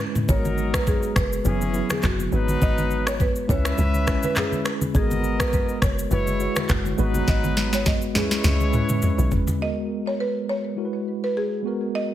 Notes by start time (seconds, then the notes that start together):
Already playing: G#3 C#4 E4 B4
0.00 finger snap
0.15 mid tom, high conga, shaker
0.27 G#1 F#3 G#3 B3 D#4 F#4 A4 A#4 C#5, kick, shaker
0.36 A#4
0.45 high conga, shaker
0.58 shaker
0.74 B4, finger snap, kick, cross-stick, shaker
0.87 G#4, kick, low conga, shaker
1.03 shaker
1.16 F#1 B4, finger snap, kick, cross-stick, low conga, shaker
1.33 shaker
1.44 F#1 E3 F#3 B3 C#4 E4 G#4, low conga, shaker
1.61 high conga, shaker
1.73 F#3 B3 E4 G#4, shaker
1.90 G#4, finger snap, cross-stick, high conga, shaker
2.03 F#1 F#4, finger snap, kick, cross-stick, clap, low conga, shaker
2.19 high conga, shaker
2.31 G#1 F#3 G#3 B3 D#4 F#4 B4, shaker
2.48 high conga, shaker
2.62 G#1 D#5, kick, shaker
2.78 high conga, shaker
2.91 shaker
3.07 C#5, finger snap, cross-stick, shaker
3.20 B4, kick, low conga, shaker
3.36 shaker
3.48 C#2 G#3 C#4 E4 B4 C#5 E5, kick, low conga, shaker
3.65 finger snap, cross-stick, shaker
3.78 C#2, low conga, shaker
3.94 high conga, shaker
4.06 G#3 C#4 E4 B4, finger snap, kick, cross-stick, shaker
4.23 B4, high conga, shaker
4.36 G#4, finger snap, cross-stick, clap, low conga, shaker
4.52 high conga, shaker
4.65 finger snap, cross-stick, shaker
4.81 high conga, shaker
4.94 G#1 G#3 B3 F#4 G#4 A4 A#4 D#5, kick, shaker
5.02 A#4
5.11 high conga, shaker
5.24 shaker
5.40 B4, finger snap, kick, cross-stick, shaker
5.53 B4, kick, low conga, shaker
5.69 shaker
5.82 F#1 C#5, finger snap, kick, cross-stick, low conga, shaker
5.99 shaker
6.10 F#1 G#3 E4 F#4 B4 C#5, low conga, shaker
6.27 high conga, shaker
6.39 G#3 E4 F#4 C#5, shaker
6.56 finger snap, cross-stick, high conga, shaker
6.69 F#1, finger snap, kick, cross-stick, clap, low conga, shaker
6.85 high conga, shaker
6.97 G#1 F#3 G#3 B3 D#4 F#4 B4, shaker
7.14 high conga, shaker
7.28 G#1 D#5, kick, snare, shaker
7.44 high conga, shaker
7.57 snare, shaker
7.73 C#5, snare, shaker
7.86 D#5, kick, snare, low conga, shaker
8.02 shaker
8.14 C#2 G#3 C#4 E4 G#4 B4 C#5, snare, low conga, shaker
8.31 snare, shaker
8.44 C#2, snare, low conga, shaker
8.60 high conga, shaker
8.72 G#3 C#4 E4 B4, mid tom, shaker
8.89 mid tom, high conga, shaker
9.02 floor tom, low conga, shaker
9.18 B1, high conga, shaker
9.31 F#1, floor tom, shaker
9.47 floor tom, high conga, shaker
9.58 G#3 B3 F#4 D#5
9.63 A#4
10.07 C#5
10.20 B4
10.49 C#5
10.76 G#3 E4 F#4 A#4
10.85 B4
11.24 B4
11.37 G#4
11.62 G#3 B3 F#4
11.67 A#4
11.95 D#5